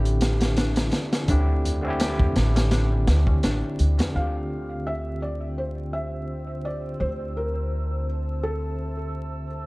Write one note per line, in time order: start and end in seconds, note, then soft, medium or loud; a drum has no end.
0.00 0.90 A1 medium
0.00 1.28 D3 medium
0.00 1.29 C4 medium
0.00 0.57 D4 loud
0.00 1.30 E4 medium
0.00 1.31 G4 loud
0.00 2.00 G4 loud
0.05 closed hi-hat soft
0.05 tabla na soft
0.21 snare medium
0.21 closed hi-hat medium
0.41 snare loud
0.41 closed hi-hat medium
0.41 tabla na medium
0.57 1.29 D4 loud
0.57 snare loud
0.57 closed hi-hat medium
0.57 tabla na medium
0.76 snare loud
0.76 closed hi-hat medium
0.76 tabla na soft
0.92 snare loud
0.92 closed hi-hat medium
1.13 snare medium
1.13 closed hi-hat medium
1.13 tabla na medium
1.28 2.33 D2 medium
1.28 1.62 D3 medium
1.28 1.62 C4 medium
1.28 2.71 D4 loud
1.28 1.63 E4 medium
1.28 1.64 G4 medium
1.28 kick loud
1.28 closed hi-hat medium
1.28 tabla na medium
1.49 tabla na soft
1.64 closed hi-hat medium
1.64 tabla ge medium
1.82 3.02 D3 medium
1.82 3.04 C4 medium
1.82 tabla na medium
1.87 3.05 E4 medium
1.87 3.06 G4 loud
2.00 4.35 G4 medium
2.00 snare loud
2.00 closed hi-hat medium
2.00 tabla na medium
2.19 kick loud
2.19 tabla na soft
2.19 tabla ge medium
2.36 3.04 A1 medium
2.36 snare loud
2.36 closed hi-hat medium
2.56 snare loud
2.56 closed hi-hat medium
2.56 tabla na medium
2.71 3.43 D4 loud
2.71 snare loud
2.71 closed hi-hat medium
2.71 tabla na medium
2.92 tabla na soft
3.07 3.39 D2 medium
3.07 snare loud
3.07 closed hi-hat medium
3.27 kick medium
3.27 tabla na medium
3.43 3.61 A1 medium
3.43 6.23 D4 loud
3.43 snare loud
3.43 closed hi-hat medium
3.43 tabla na medium
3.63 tabla na soft
3.79 3.96 D2 medium
3.79 closed hi-hat medium
3.98 snare loud
3.98 closed hi-hat medium
3.98 tabla na medium
3.98 tabla ge medium
4.12 6.97 D2 medium
4.12 9.66 D3 medium
4.12 9.66 C4 medium
4.12 9.66 D4 medium
4.12 9.66 C5 medium
4.12 4.89 F5 medium
4.12 6.97 G5 medium
4.12 9.66 E6 medium
4.18 9.66 F4 medium
4.18 9.66 G4 medium
4.87 5.20 E5 medium
5.22 5.59 D5 medium
5.58 5.94 C5 medium
5.93 6.67 E5 medium
6.65 7.02 D5 medium
7.00 9.66 D2 medium
7.00 7.08 C5 medium
7.00 9.66 A5 medium
7.37 8.04 A#4 medium
8.43 9.46 A4 medium